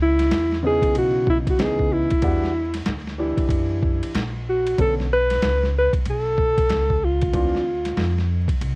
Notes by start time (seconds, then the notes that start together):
Already playing: C#2
0.02 E4
0.19 snare, ride
0.31 E2, snare, hi-hat pedal, ride
0.52 snare
0.63 C#3 E3 B3 D#4 G#4
0.82 muted upright bass stroke, kick, ride
0.95 B1 F#4, ride
1.27 E4, kick
1.47 F#4, kick, ride
1.59 C#2 C#3 E3 B3 D#4 G#4, snare, hi-hat pedal, ride
1.79 kick
1.93 E4
2.10 muted upright bass stroke, kick, ride
2.22 E2 E3 G3 D4 F#4, kick, ride
2.44 snare
2.74 snare, ride
2.86 D2, snare, hi-hat pedal, ride
3.08 snare
3.18 E3 D4 E4 G4
3.37 muted upright bass stroke, kick, ride
3.49 F#2, kick, ride
3.83 kick
4.03 muted upright bass stroke, ride
4.15 A#1, snare, hi-hat pedal, ride
4.49 F#4
4.67 ride
4.78 B1 D3 B3 C#4 A4, kick, ride
5.00 snare
5.13 B4
5.30 snare, ride
5.42 C#2, snare, hi-hat pedal, ride
5.63 snare
5.78 B4
5.93 muted upright bass stroke, kick, ride
6.05 B1, ride
6.10 A4
6.38 kick
6.58 kick, ride
6.69 C#2, snare, hi-hat pedal, ride
6.90 kick
7.04 F4
7.21 kick, ride
7.33 D2 E3 C4 D4 F4, kick, ride
7.55 snare
7.85 snare, ride
7.97 F2, snare, hi-hat pedal, ride
8.19 snare
8.48 muted upright bass stroke, kick, ride
8.61 C2, ride